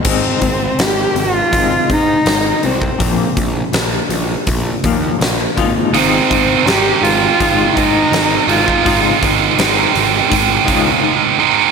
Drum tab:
CC |x---------------|----------------|----------------|----------------|
HH |--o-o-o-o-o-o-o-|o-o-o-o-o-o-o-o-|o-o-o-o-o-o-o-o-|o-o-o-o-o-o-----|
SD |----o-------o---|----o-------o---|----o-------o---|----o-----------|
BD |o-o-----o-o----o|o-o-----o-o---o-|--o-----o-o----o|o-o-----o-o-----|